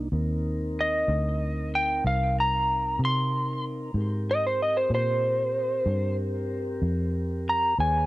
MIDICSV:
0, 0, Header, 1, 4, 480
1, 0, Start_track
1, 0, Key_signature, -3, "minor"
1, 0, Tempo, 637620
1, 88, Time_signature, 12, 3, 24, 8
1, 6070, End_track
2, 0, Start_track
2, 0, Title_t, "Electric slide guitar"
2, 0, Program_c, 0, 29
2, 607, Note_on_c, 0, 75, 78
2, 1287, Note_off_c, 0, 75, 0
2, 1319, Note_on_c, 0, 79, 78
2, 1538, Note_off_c, 0, 79, 0
2, 1558, Note_on_c, 0, 77, 71
2, 1777, Note_off_c, 0, 77, 0
2, 1808, Note_on_c, 0, 82, 73
2, 2255, Note_off_c, 0, 82, 0
2, 2295, Note_on_c, 0, 84, 83
2, 2740, Note_off_c, 0, 84, 0
2, 3243, Note_on_c, 0, 75, 86
2, 3344, Note_off_c, 0, 75, 0
2, 3362, Note_on_c, 0, 72, 77
2, 3464, Note_off_c, 0, 72, 0
2, 3481, Note_on_c, 0, 75, 82
2, 3583, Note_off_c, 0, 75, 0
2, 3591, Note_on_c, 0, 72, 74
2, 3698, Note_off_c, 0, 72, 0
2, 3723, Note_on_c, 0, 72, 98
2, 4639, Note_off_c, 0, 72, 0
2, 5642, Note_on_c, 0, 82, 77
2, 5860, Note_off_c, 0, 82, 0
2, 5874, Note_on_c, 0, 80, 86
2, 6070, Note_off_c, 0, 80, 0
2, 6070, End_track
3, 0, Start_track
3, 0, Title_t, "Tonewheel organ"
3, 0, Program_c, 1, 16
3, 90, Note_on_c, 1, 60, 66
3, 95, Note_on_c, 1, 63, 68
3, 98, Note_on_c, 1, 70, 66
3, 2943, Note_off_c, 1, 60, 0
3, 2945, Note_off_c, 1, 63, 0
3, 2947, Note_off_c, 1, 70, 0
3, 2981, Note_on_c, 1, 67, 65
3, 2985, Note_on_c, 1, 60, 65
3, 2988, Note_on_c, 1, 70, 65
3, 5828, Note_off_c, 1, 67, 0
3, 5830, Note_off_c, 1, 60, 0
3, 5831, Note_off_c, 1, 70, 0
3, 5858, Note_on_c, 1, 71, 60
3, 5862, Note_on_c, 1, 68, 61
3, 5872, Note_on_c, 1, 73, 63
3, 6070, Note_off_c, 1, 68, 0
3, 6070, Note_off_c, 1, 71, 0
3, 6070, Note_off_c, 1, 73, 0
3, 6070, End_track
4, 0, Start_track
4, 0, Title_t, "Fingered electric bass"
4, 0, Program_c, 2, 33
4, 90, Note_on_c, 2, 39, 76
4, 788, Note_off_c, 2, 39, 0
4, 814, Note_on_c, 2, 38, 82
4, 1511, Note_off_c, 2, 38, 0
4, 1539, Note_on_c, 2, 36, 77
4, 2234, Note_off_c, 2, 36, 0
4, 2252, Note_on_c, 2, 48, 83
4, 2950, Note_off_c, 2, 48, 0
4, 2967, Note_on_c, 2, 44, 78
4, 3668, Note_off_c, 2, 44, 0
4, 3689, Note_on_c, 2, 46, 76
4, 4389, Note_off_c, 2, 46, 0
4, 4410, Note_on_c, 2, 43, 79
4, 5109, Note_off_c, 2, 43, 0
4, 5132, Note_on_c, 2, 41, 82
4, 5830, Note_off_c, 2, 41, 0
4, 5861, Note_on_c, 2, 39, 79
4, 6070, Note_off_c, 2, 39, 0
4, 6070, End_track
0, 0, End_of_file